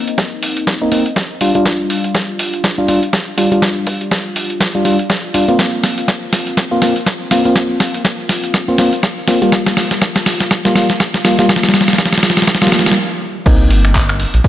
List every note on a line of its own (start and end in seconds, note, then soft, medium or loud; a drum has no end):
0.00 0.78 A#3 medium
0.00 0.78 C4 medium
0.00 0.78 D#4 loud
0.07 closed hi-hat medium
0.18 kick loud
0.18 snare medium
0.18 closed hi-hat soft
0.43 open hi-hat loud
0.57 closed hi-hat medium
0.67 kick loud
0.67 snare medium
0.67 closed hi-hat medium
0.81 0.90 A#3 medium
0.81 0.90 C4 medium
0.81 0.90 D#4 loud
0.92 1.03 A#3 medium
0.92 1.04 C4 medium
0.92 1.04 D#4 loud
0.92 open hi-hat loud
1.06 closed hi-hat medium
1.16 kick loud
1.16 snare medium
1.16 closed hi-hat medium
1.41 1.52 G3 medium
1.41 1.52 D4 medium
1.41 1.52 F4 loud
1.41 open hi-hat loud
1.55 2.75 G3 medium
1.55 2.75 D4 medium
1.55 2.75 F4 loud
1.55 closed hi-hat medium
1.65 kick loud
1.65 snare medium
1.65 closed hi-hat soft
1.90 open hi-hat loud
2.04 closed hi-hat medium
2.15 kick loud
2.15 snare medium
2.15 closed hi-hat medium
2.39 open hi-hat loud
2.54 closed hi-hat medium
2.64 kick loud
2.64 snare medium
2.64 closed hi-hat soft
2.78 2.87 G3 medium
2.78 2.87 D4 medium
2.78 2.87 F4 loud
2.88 3.00 G3 medium
2.88 3.00 D4 medium
2.88 3.00 F4 loud
2.88 open hi-hat loud
3.03 closed hi-hat medium
3.13 kick loud
3.13 snare medium
3.13 closed hi-hat soft
3.38 3.48 G3 medium
3.38 3.48 D4 medium
3.38 3.48 F4 loud
3.38 open hi-hat loud
3.52 4.71 G3 medium
3.52 4.71 D4 medium
3.52 4.71 F4 loud
3.52 closed hi-hat medium
3.62 kick loud
3.62 snare medium
3.62 closed hi-hat soft
3.87 kick medium
3.87 open hi-hat loud
4.01 closed hi-hat medium
4.11 kick loud
4.11 snare medium
4.11 closed hi-hat medium
4.36 open hi-hat loud
4.50 closed hi-hat medium
4.60 kick loud
4.60 snare medium
4.60 closed hi-hat soft
4.75 4.84 G3 medium
4.75 4.84 D4 medium
4.75 4.84 F4 loud
4.85 4.97 G3 loud
4.85 4.97 D4 medium
4.85 4.97 F4 loud
4.85 open hi-hat loud
4.99 closed hi-hat medium
5.10 kick loud
5.10 snare medium
5.10 closed hi-hat soft
5.34 5.45 G3 loud
5.34 5.45 D4 medium
5.34 5.45 F4 loud
5.34 open hi-hat loud
5.48 6.68 A#3 medium
5.48 6.68 C4 medium
5.48 6.68 F4 loud
5.48 closed hi-hat medium
5.59 kick loud
5.59 snare medium
5.59 closed hi-hat medium
5.59 shaker soft
5.73 shaker soft
5.84 snare medium
5.84 open hi-hat loud
5.84 shaker medium
5.98 closed hi-hat medium
5.98 shaker soft
6.08 kick loud
6.08 snare medium
6.08 closed hi-hat medium
6.08 shaker soft
6.23 shaker soft
6.33 snare medium
6.33 open hi-hat loud
6.33 shaker medium
6.47 closed hi-hat medium
6.47 shaker soft
6.57 kick loud
6.57 snare medium
6.57 closed hi-hat soft
6.57 shaker soft
6.71 6.80 A#3 medium
6.71 6.80 C4 medium
6.71 6.80 F4 loud
6.71 shaker soft
6.82 6.94 A#3 loud
6.82 6.94 C4 medium
6.82 6.94 F4 loud
6.82 snare medium
6.82 open hi-hat loud
6.82 shaker medium
6.96 closed hi-hat medium
6.96 shaker soft
7.06 kick loud
7.06 snare medium
7.06 closed hi-hat medium
7.06 shaker soft
7.21 shaker soft
7.31 7.42 A#3 medium
7.31 7.42 C4 medium
7.31 7.42 F4 loud
7.31 snare medium
7.31 open hi-hat loud
7.31 shaker medium
7.45 8.65 A#3 medium
7.45 8.65 C4 medium
7.45 8.65 F4 loud
7.45 closed hi-hat medium
7.45 shaker soft
7.56 kick loud
7.56 snare medium
7.56 closed hi-hat medium
7.56 shaker soft
7.70 shaker soft
7.80 kick medium
7.80 snare medium
7.80 open hi-hat loud
7.80 shaker medium
7.94 closed hi-hat medium
7.94 shaker soft
8.05 kick loud
8.05 snare medium
8.05 closed hi-hat medium
8.05 shaker soft
8.19 shaker soft
8.29 snare medium
8.29 open hi-hat loud
8.29 shaker medium
8.44 closed hi-hat medium
8.44 shaker soft
8.54 kick loud
8.54 snare medium
8.54 closed hi-hat medium
8.54 shaker soft
8.68 8.77 A#3 loud
8.68 8.77 C4 medium
8.68 8.77 F4 loud
8.68 shaker soft
8.78 8.90 A#3 medium
8.78 8.90 C4 medium
8.78 8.90 F4 loud
8.78 snare medium
8.78 open hi-hat loud
8.78 shaker medium
8.93 closed hi-hat medium
8.93 shaker soft
9.03 kick loud
9.03 snare medium
9.03 closed hi-hat medium
9.03 shaker soft
9.18 shaker soft
9.28 9.39 A#3 loud
9.28 9.39 C4 medium
9.28 9.39 F4 loud
9.28 snare medium
9.28 open hi-hat loud
9.28 shaker medium
9.42 10.61 G3 medium
9.42 10.62 A#3 medium
9.42 10.62 F4 loud
9.42 closed hi-hat medium
9.42 shaker soft
9.52 kick loud
9.52 snare medium
9.52 closed hi-hat medium
9.52 shaker soft
9.67 snare medium
9.67 shaker soft
9.77 snare medium
9.77 open hi-hat loud
9.77 shaker medium
9.91 snare medium
9.91 closed hi-hat medium
9.91 shaker soft
10.02 kick loud
10.02 snare medium
10.02 closed hi-hat medium
10.02 shaker soft
10.16 snare medium
10.16 shaker soft
10.26 snare loud
10.26 open hi-hat loud
10.26 shaker medium
10.40 snare medium
10.40 closed hi-hat medium
10.40 shaker soft
10.51 kick loud
10.51 snare medium
10.51 closed hi-hat medium
10.51 shaker soft
10.65 10.74 G3 medium
10.65 10.74 A#3 medium
10.65 10.74 F4 loud
10.65 snare medium
10.65 shaker soft
10.75 10.87 G3 loud
10.75 10.87 A#3 medium
10.75 10.87 F4 loud
10.75 snare loud
10.75 open hi-hat loud
10.75 shaker medium
10.90 snare medium
10.90 closed hi-hat medium
10.90 shaker soft
11.00 kick loud
11.00 snare loud
11.00 closed hi-hat medium
11.00 shaker soft
11.14 snare medium
11.14 shaker soft
11.24 11.35 G3 loud
11.24 11.35 A#3 medium
11.24 11.35 F4 loud
11.24 snare loud
11.24 open hi-hat loud
11.24 shaker medium
11.39 12.58 G3 medium
11.39 12.58 A#3 medium
11.39 12.58 F4 loud
11.39 snare loud
11.39 closed hi-hat medium
11.39 shaker soft
11.49 kick loud
11.49 snare loud
11.49 closed hi-hat medium
11.49 shaker soft
11.56 snare medium
11.63 snare medium
11.63 shaker soft
11.69 snare medium
11.74 kick medium
11.74 snare loud
11.74 open hi-hat loud
11.74 shaker medium
11.81 snare medium
11.88 snare medium
11.88 closed hi-hat medium
11.88 shaker soft
11.93 snare medium
11.98 kick loud
11.98 snare loud
11.98 closed hi-hat medium
11.98 shaker soft
12.06 snare medium
12.13 snare medium
12.13 shaker soft
12.18 snare medium
12.23 snare loud
12.23 open hi-hat loud
12.23 shaker medium
12.30 snare medium
12.37 snare medium
12.37 closed hi-hat medium
12.37 shaker soft
12.42 snare loud
12.47 kick loud
12.47 snare loud
12.47 closed hi-hat medium
12.47 shaker soft
12.55 snare loud
12.62 12.70 G3 medium
12.62 12.70 A#3 medium
12.62 12.70 F4 loud
12.62 snare medium
12.62 shaker soft
12.67 snare loud
12.72 12.97 G3 medium
12.72 12.97 A#3 medium
12.72 12.97 F4 loud
12.72 snare loud
12.72 open hi-hat loud
12.72 shaker medium
12.79 snare medium
12.86 snare loud
12.86 closed hi-hat medium
12.86 shaker soft
12.92 snare loud
13.46 13.72 C2 loud
13.46 14.20 A#3 loud
13.46 14.20 C4 medium
13.46 14.20 D#4 loud
13.46 kick loud
13.46 closed hi-hat medium
13.46 crash loud
13.46 shaker soft
13.60 shaker soft
13.70 14.25 G1 loud
13.70 open hi-hat loud
13.70 shaker medium
13.85 finger snap medium
13.85 closed hi-hat medium
13.85 shaker soft
13.95 kick loud
13.95 clap loud
13.95 closed hi-hat medium
13.95 shaker soft
14.09 finger snap medium
14.09 shaker soft
14.20 open hi-hat loud
14.20 shaker medium
14.34 14.40 A#1 medium
14.34 closed hi-hat medium
14.34 shaker soft
14.44 kick loud
14.44 closed hi-hat medium
14.44 shaker soft